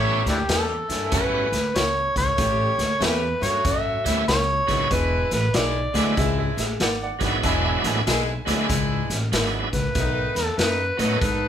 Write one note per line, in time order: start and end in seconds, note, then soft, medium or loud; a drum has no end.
0.00 0.17 A1 medium
0.00 0.22 G3 medium
0.00 0.31 G3 medium
0.00 0.23 A3 medium
0.00 0.31 A3 medium
0.00 0.23 B3 medium
0.00 0.23 C#4 medium
0.00 0.31 C#4 medium
0.00 0.23 E4 medium
0.00 0.31 G4 medium
0.00 0.24 C#5 medium
0.26 0.43 D2 medium
0.26 0.38 D4 soft
0.26 0.38 E4 soft
0.26 0.49 G4 medium
0.26 snare soft
0.26 closed hi-hat medium
0.48 0.80 E2 medium
0.48 0.74 G3 medium
0.48 0.73 A3 medium
0.48 0.73 C#4 medium
0.48 0.74 G4 medium
0.48 snare loud
0.48 closed hi-hat medium
0.52 1.10 A4 medium
0.89 1.07 G2 medium
0.89 1.62 E3 medium
0.89 1.61 A3 medium
0.89 1.61 C#4 medium
0.89 1.62 E4 medium
0.89 snare soft
0.89 closed hi-hat medium
1.11 1.43 F#2 medium
1.11 1.48 G3 medium
1.11 1.48 A3 medium
1.11 1.48 B3 medium
1.11 1.49 C#4 medium
1.11 1.49 F#4 medium
1.11 1.78 B4 loud
1.11 kick loud
1.11 snare soft
1.11 closed hi-hat medium
1.52 1.70 D2 medium
1.52 snare soft
1.52 closed hi-hat medium
1.75 2.06 C#2 medium
1.75 2.17 C#5 medium
1.75 snare loud
1.75 closed hi-hat medium
2.16 2.33 C#2 medium
2.16 3.05 C#5 loud
2.16 kick medium
2.16 snare soft
2.16 closed hi-hat medium
2.37 2.69 A1 medium
2.37 2.83 G3 medium
2.37 2.83 A3 medium
2.37 2.83 C#4 medium
2.37 2.83 G4 medium
2.37 kick loud
2.37 snare soft
2.37 closed hi-hat medium
2.78 2.96 D2 medium
2.78 snare soft
2.78 closed hi-hat medium
3.00 3.32 E2 loud
3.00 3.25 G3 medium
3.00 3.25 A3 medium
3.00 3.25 C#4 medium
3.00 3.25 G4 medium
3.00 3.45 B4 loud
3.00 snare loud
3.00 closed hi-hat medium
3.41 3.59 G2 loud
3.41 4.14 F#3 medium
3.41 4.13 A3 medium
3.41 4.14 C#4 medium
3.41 4.14 F#4 medium
3.41 3.67 C#5 medium
3.41 snare soft
3.41 closed hi-hat medium
3.65 3.95 F#2 loud
3.65 4.05 E5 medium
3.65 kick loud
3.65 snare soft
3.65 closed hi-hat medium
4.04 4.22 D2 medium
4.04 4.25 G3 medium
4.04 4.25 A3 medium
4.04 4.25 B3 medium
4.04 4.26 C#4 medium
4.04 4.26 E4 medium
4.04 4.26 E5 medium
4.04 snare soft
4.04 closed hi-hat medium
4.28 4.59 C#2 medium
4.28 4.94 C#5 loud
4.28 snare loud
4.28 closed hi-hat medium
4.67 4.85 C#2 medium
4.67 4.88 F#3 medium
4.67 4.88 G#3 medium
4.67 4.88 B3 medium
4.67 4.89 D4 medium
4.67 4.89 E4 medium
4.67 kick medium
4.67 snare soft
4.67 closed hi-hat medium
4.90 5.22 E1 medium
4.90 5.36 E3 medium
4.90 5.35 G#3 medium
4.90 5.35 D4 medium
4.90 5.36 E4 medium
4.90 5.32 B4 loud
4.90 kick loud
4.90 snare soft
4.90 closed hi-hat medium
5.31 5.49 A1 loud
5.31 5.58 B4 medium
5.31 snare soft
5.31 closed hi-hat medium
5.53 5.85 B1 medium
5.53 5.78 E3 medium
5.53 5.78 G#3 medium
5.53 5.78 D4 medium
5.53 5.78 E4 medium
5.53 6.18 D5 medium
5.53 snare loud
5.53 closed hi-hat medium
5.93 6.11 D2 loud
5.93 6.66 E3 medium
5.93 6.14 F#3 medium
5.93 6.66 G#3 medium
5.93 6.15 G#3 medium
5.93 6.15 B3 medium
5.93 6.66 D4 medium
5.93 6.15 D4 medium
5.93 6.66 E4 medium
5.93 6.15 E4 medium
5.93 snare soft
5.93 closed hi-hat medium
6.14 6.48 C#2 loud
6.14 6.18 D#5 medium
6.14 kick loud
6.14 closed hi-hat medium
6.18 6.37 G#4 medium
6.18 6.38 E5 medium
6.18 snare soft
6.39 6.58 G#4 medium
6.39 6.58 E5 medium
6.57 6.74 A1 medium
6.57 6.79 G#4 medium
6.57 6.80 E5 medium
6.57 snare soft
6.57 closed hi-hat medium
6.80 7.11 G#1 medium
6.80 7.01 D5 medium
6.80 7.02 F#5 medium
6.80 snare loud
6.80 closed hi-hat medium
7.03 7.22 D5 medium
7.03 7.23 F#5 medium
7.19 7.38 G#1 medium
7.19 8.01 F#3 medium
7.19 8.01 G#3 medium
7.19 8.01 B3 medium
7.19 8.02 D4 medium
7.19 8.02 E4 loud
7.19 kick medium
7.19 snare soft
7.19 closed hi-hat medium
7.24 7.43 D5 medium
7.24 7.44 F#5 medium
7.42 7.74 E1 medium
7.42 7.88 E3 medium
7.42 7.88 G#3 medium
7.42 7.88 D4 medium
7.42 7.88 E4 medium
7.42 7.63 E5 medium
7.42 7.64 G#5 medium
7.42 kick loud
7.42 snare soft
7.42 closed hi-hat medium
7.65 7.84 E5 medium
7.65 7.85 G#5 medium
7.84 8.01 A1 medium
7.84 8.06 E5 medium
7.84 8.06 G#5 medium
7.84 snare soft
7.84 closed hi-hat medium
8.06 8.37 B1 medium
8.06 8.31 E3 medium
8.06 8.30 G#3 loud
8.06 8.31 D4 medium
8.06 8.31 E4 medium
8.06 8.68 G#5 medium
8.06 snare loud
8.06 closed hi-hat loud
8.45 8.64 D2 loud
8.45 9.19 E3 medium
8.45 8.66 F#3 medium
8.45 9.18 G#3 medium
8.45 8.67 G#3 medium
8.45 8.67 B3 medium
8.45 9.19 D4 medium
8.45 8.67 D4 medium
8.45 9.19 E4 loud
8.45 8.67 E4 medium
8.45 snare soft
8.45 closed hi-hat medium
8.69 9.00 C#2 medium
8.69 kick loud
8.69 snare soft
8.69 closed hi-hat loud
9.10 9.27 A1 medium
9.10 snare soft
9.10 closed hi-hat medium
9.32 9.63 G#1 medium
9.32 9.69 F#3 medium
9.32 9.69 G#3 soft
9.32 9.69 B3 soft
9.32 9.69 D4 medium
9.32 9.69 E4 medium
9.32 snare loud
9.32 closed hi-hat medium
9.73 9.90 C#2 medium
9.73 10.38 B4 medium
9.73 kick medium
9.73 snare soft
9.73 closed hi-hat medium
9.94 10.26 B1 medium
9.94 10.41 D#3 medium
9.94 10.40 A3 medium
9.94 10.40 B3 medium
9.94 10.41 D#4 medium
9.94 kick loud
9.94 snare soft
9.94 closed hi-hat medium
10.35 10.53 E2 medium
10.35 10.60 A4 medium
10.35 snare soft
10.35 closed hi-hat medium
10.57 10.89 F#2 medium
10.57 10.83 D#3 medium
10.57 10.82 A3 medium
10.57 10.82 B3 medium
10.57 10.83 D#4 medium
10.57 10.99 B4 medium
10.57 snare loud
10.57 closed hi-hat medium
10.97 11.16 A2 medium
10.97 11.19 F#3 medium
10.97 11.19 A3 medium
10.97 11.48 A3 medium
10.97 11.19 B3 medium
10.97 11.48 B3 medium
10.97 11.19 C#4 medium
10.97 11.19 D#4 medium
10.97 11.48 D#4 medium
10.97 11.48 A4 medium
10.97 11.20 B4 medium
10.97 snare soft
10.97 closed hi-hat medium
11.21 11.48 G#2 medium
11.21 11.48 B4 medium
11.21 kick loud
11.21 snare soft
11.21 closed hi-hat medium